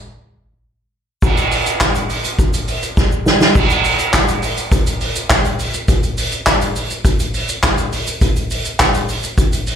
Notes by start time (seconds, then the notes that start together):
1.22 kick, crash, shaker
1.37 closed hi-hat, shaker
1.52 open hi-hat, shaker
1.66 closed hi-hat, shaker
1.81 kick, snare, clap, shaker
1.95 closed hi-hat, shaker
2.10 open hi-hat, shaker
2.24 closed hi-hat, shaker
2.39 kick, shaker
2.53 closed hi-hat, shaker
2.68 open hi-hat, shaker
2.82 closed hi-hat, shaker
2.97 kick, snare, shaker
3.12 shaker
3.26 snare, shaker
3.41 snare, shaker
3.55 kick, crash, shaker
3.70 closed hi-hat, shaker
3.84 open hi-hat, shaker
3.99 closed hi-hat, shaker
4.14 kick, snare, clap, closed hi-hat, shaker
4.28 closed hi-hat, shaker
4.43 open hi-hat, shaker
4.57 closed hi-hat, shaker
4.72 kick, closed hi-hat, shaker
4.86 closed hi-hat, shaker
5.01 open hi-hat, shaker
5.16 closed hi-hat, shaker
5.30 kick, snare, clap, closed hi-hat, shaker
5.44 closed hi-hat, shaker
5.59 open hi-hat, shaker
5.74 closed hi-hat, shaker
5.88 kick, closed hi-hat, shaker
6.03 closed hi-hat, shaker
6.18 open hi-hat, shaker
6.32 closed hi-hat, shaker
6.47 kick, snare, clap, closed hi-hat, shaker
6.61 closed hi-hat, shaker
6.76 open hi-hat, shaker
6.90 closed hi-hat, shaker
7.05 kick, closed hi-hat, shaker
7.19 closed hi-hat, shaker
7.34 open hi-hat, shaker
7.49 closed hi-hat, shaker
7.63 kick, snare, clap, closed hi-hat, shaker
7.78 closed hi-hat, shaker
7.92 open hi-hat, shaker
8.07 closed hi-hat, shaker
8.21 kick, closed hi-hat, shaker
8.36 closed hi-hat, shaker
8.51 open hi-hat, shaker
8.65 closed hi-hat, shaker
8.80 kick, snare, clap, closed hi-hat, shaker
8.94 closed hi-hat, shaker
9.09 open hi-hat, shaker
9.23 closed hi-hat, shaker
9.38 kick, closed hi-hat, shaker
9.52 closed hi-hat, shaker
9.67 open hi-hat, shaker